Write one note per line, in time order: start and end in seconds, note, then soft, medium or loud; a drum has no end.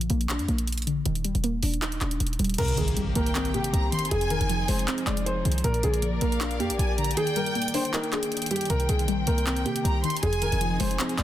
0.00 0.48 A#2 loud
0.00 0.67 D3 medium
0.00 0.86 F3 medium
0.00 closed hi-hat medium
0.10 0.41 A#1 loud
0.10 0.47 A#3 medium
0.10 closed hi-hat medium
0.21 closed hi-hat soft
0.29 1.06 D4 loud
0.29 clap loud
0.29 closed hi-hat medium
0.39 0.48 F2 loud
0.39 closed hi-hat medium
0.48 1.03 A#1 loud
0.48 1.06 A#3 medium
0.48 closed hi-hat medium
0.58 closed hi-hat medium
0.67 closed hi-hat medium
0.72 closed hi-hat medium
0.78 closed hi-hat medium
0.82 closed hi-hat soft
0.87 1.06 D3 medium
0.87 closed hi-hat medium
1.06 1.34 D#1 loud
1.06 2.01 D#3 loud
1.06 closed hi-hat medium
1.15 closed hi-hat medium
1.24 2.20 G3 medium
1.24 closed hi-hat medium
1.35 1.62 D#1 loud
1.35 closed hi-hat soft
1.44 2.39 A#3 medium
1.44 closed hi-hat medium
1.63 2.00 D#1 loud
1.63 2.00 D4 medium
1.63 open hi-hat medium
1.74 closed hi-hat soft
1.82 2.58 D#4 loud
1.82 clap loud
1.82 closed hi-hat medium
1.92 closed hi-hat medium
2.01 2.20 D#1 loud
2.01 2.59 D4 medium
2.01 clap medium
2.01 closed hi-hat medium
2.11 closed hi-hat medium
2.20 2.39 D#1 loud
2.20 closed hi-hat medium
2.27 closed hi-hat medium
2.33 closed hi-hat soft
2.39 2.58 D#1 loud
2.39 2.59 G3 medium
2.39 closed hi-hat medium
2.44 closed hi-hat medium
2.50 closed hi-hat medium
2.54 closed hi-hat soft
2.58 2.77 C2 loud
2.58 3.54 C3 loud
2.58 4.10 D#3 medium
2.58 4.10 A#3 medium
2.58 5.61 C4 medium
2.58 4.10 G4 medium
2.58 2.74 A#4 loud
2.58 closed hi-hat loud
2.58 crash loud
2.58 impact medium
2.68 closed hi-hat medium
2.77 2.98 C2 loud
2.77 3.73 D#3 medium
2.77 2.94 G#4 medium
2.77 closed hi-hat medium
2.88 closed hi-hat medium
2.97 3.15 A#1 loud
2.97 3.92 G3 medium
2.97 closed hi-hat medium
3.15 3.55 C2 loud
3.15 3.53 A#3 medium
3.15 3.52 A#4 medium
3.15 3.70 G5 medium
3.15 closed hi-hat medium
3.26 closed hi-hat medium
3.35 4.11 C4 loud
3.35 clap loud
3.35 closed hi-hat medium
3.45 closed hi-hat medium
3.54 3.72 C3 loud
3.54 4.11 A#3 medium
3.54 4.08 G4 medium
3.54 closed hi-hat medium
3.64 closed hi-hat medium
3.73 3.91 C2 loud
3.73 3.91 A#5 medium
3.73 closed hi-hat medium
3.92 4.11 D#3 medium
3.92 4.10 C6 medium
3.92 closed hi-hat medium
3.99 closed hi-hat medium
4.05 closed hi-hat medium
4.11 4.39 F1 loud
4.11 5.07 F2 loud
4.11 7.14 F3 medium
4.11 5.63 D#4 medium
4.11 4.27 G#4 loud
4.11 5.63 G#4 medium
4.11 4.84 G#5 loud
4.11 closed hi-hat loud
4.21 closed hi-hat medium
4.30 5.26 D#3 medium
4.30 4.46 A#4 medium
4.30 closed hi-hat medium
4.41 4.68 F1 loud
4.41 closed hi-hat soft
4.50 5.45 F3 medium
4.50 closed hi-hat medium
4.68 4.87 F1 loud
4.68 5.06 G#3 medium
4.68 5.05 C5 medium
4.68 open hi-hat medium
4.79 closed hi-hat medium
4.88 5.64 C4 loud
4.88 clap loud
4.88 closed hi-hat medium
4.98 closed hi-hat medium
5.07 5.44 F1 loud
5.07 5.64 G#3 medium
5.07 5.23 D5 medium
5.07 clap medium
5.07 closed hi-hat medium
5.17 closed hi-hat medium
5.26 5.62 C5 medium
5.26 closed hi-hat medium
5.45 5.63 C2 loud
5.45 5.64 D#3 medium
5.45 closed hi-hat medium
5.52 closed hi-hat medium
5.58 closed hi-hat medium
5.64 5.83 A#1 loud
5.64 6.60 A#2 loud
5.64 10.19 A#3 medium
5.64 7.16 A#4 medium
5.64 5.80 A#4 loud
5.64 8.67 D5 medium
5.64 closed hi-hat loud
5.74 closed hi-hat medium
5.83 6.20 A#1 loud
5.83 6.79 D3 medium
5.83 5.99 G#4 medium
5.83 closed hi-hat medium
5.94 closed hi-hat soft
6.02 6.98 F3 medium
6.02 closed hi-hat medium
6.21 6.61 A#1 loud
6.21 6.59 A#3 medium
6.21 6.58 A#4 medium
6.21 6.76 F5 medium
6.21 closed hi-hat medium
6.32 closed hi-hat medium
6.41 7.17 D4 loud
6.41 clap loud
6.41 closed hi-hat medium
6.51 closed hi-hat medium
6.60 6.71 F2 loud
6.60 7.17 A#3 medium
6.60 7.14 G4 medium
6.60 closed hi-hat medium
6.70 6.78 A#1 loud
6.70 closed hi-hat medium
6.79 7.16 A#1 loud
6.79 6.97 G#5 medium
6.79 closed hi-hat medium
6.98 7.17 D3 medium
6.98 7.16 A#5 medium
6.98 closed hi-hat medium
7.04 closed hi-hat medium
7.11 closed hi-hat medium
7.17 8.13 D#3 loud
7.17 10.20 D#3 medium
7.17 7.33 G#4 loud
7.17 10.20 G5 medium
7.17 7.90 G5 loud
7.17 closed hi-hat medium
7.27 closed hi-hat medium
7.36 8.32 G3 medium
7.36 7.52 A#4 medium
7.36 closed hi-hat medium
7.46 closed hi-hat soft
7.55 8.51 A#3 medium
7.55 closed hi-hat soft
7.62 closed hi-hat medium
7.68 closed hi-hat medium
7.74 8.11 D4 medium
7.74 7.90 C5 medium
7.74 open hi-hat medium
7.85 closed hi-hat medium
7.94 8.70 D#4 loud
7.94 8.09 A#4 medium
7.94 clap loud
7.94 closed hi-hat medium
8.04 closed hi-hat medium
8.13 8.70 D4 medium
8.13 8.49 G#4 medium
8.13 clap medium
8.13 closed hi-hat medium
8.23 closed hi-hat medium
8.32 closed hi-hat soft
8.37 closed hi-hat medium
8.42 closed hi-hat medium
8.46 closed hi-hat medium
8.51 8.70 G3 medium
8.51 8.67 G4 medium
8.51 closed hi-hat medium
8.56 closed hi-hat medium
8.61 closed hi-hat medium
8.65 closed hi-hat soft
8.70 8.88 C2 loud
8.70 9.65 C3 loud
8.70 10.21 C4 medium
8.70 8.86 A#4 loud
8.70 closed hi-hat loud
8.80 closed hi-hat medium
8.89 9.10 C2 loud
8.89 9.85 D#3 medium
8.89 9.05 G#4 medium
8.89 closed hi-hat medium
8.99 closed hi-hat medium
9.08 9.26 A#1 loud
9.08 10.04 G3 medium
9.08 closed hi-hat medium
9.27 9.67 C2 loud
9.27 9.64 A#3 loud
9.27 9.63 A#4 medium
9.27 9.81 G5 medium
9.27 closed hi-hat medium
9.38 closed hi-hat soft
9.46 10.23 C4 loud
9.46 clap loud
9.46 closed hi-hat medium
9.56 closed hi-hat medium
9.65 9.84 C3 loud
9.65 10.23 A#3 medium
9.65 10.19 G4 medium
9.65 closed hi-hat medium
9.76 closed hi-hat medium
9.84 10.03 C2 loud
9.84 10.03 A#5 medium
9.84 closed hi-hat medium
10.04 10.23 D#3 medium
10.04 10.22 C6 medium
10.04 closed hi-hat medium
10.10 closed hi-hat medium
10.17 closed hi-hat medium
10.23 10.51 F1 loud
10.23 11.18 F2 loud
10.23 11.23 F3 medium
10.23 11.23 C4 medium
10.23 11.23 D#4 medium
10.23 11.23 G#4 medium
10.23 10.39 G#4 loud
10.23 10.95 G#5 loud
10.23 closed hi-hat loud
10.33 closed hi-hat medium
10.42 11.23 D#3 medium
10.42 10.58 A#4 medium
10.42 closed hi-hat medium
10.52 10.79 F1 loud
10.52 closed hi-hat medium
10.61 11.23 F3 medium
10.61 closed hi-hat medium
10.80 10.99 F1 loud
10.80 11.17 G#3 medium
10.80 11.16 C5 medium
10.80 open hi-hat medium
10.91 closed hi-hat medium
10.99 11.23 C4 loud
10.99 clap loud
10.99 closed hi-hat medium
11.09 closed hi-hat medium
11.18 11.23 F1 loud
11.18 11.23 G#3 medium
11.18 11.23 D5 medium
11.18 clap medium
11.18 closed hi-hat medium